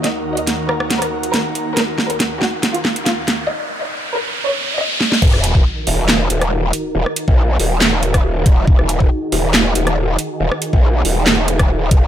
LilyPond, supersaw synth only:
\new Staff \with { instrumentName = "Supersaw synth" } { \time 4/4 \key ees \minor \tempo 4 = 139 << { ges'1~ | ges'1 | r1 | bes'1~ |
bes'1 | aes'1~ | aes'1 | } \\ { <ees, ees bes>1~ | <ees, ees bes>1 | r1 | <ees ees' ges'>1~ |
<ees ees' ges'>1~ | <ees ees' ges'>1~ | <ees ees' ges'>1 | } >> }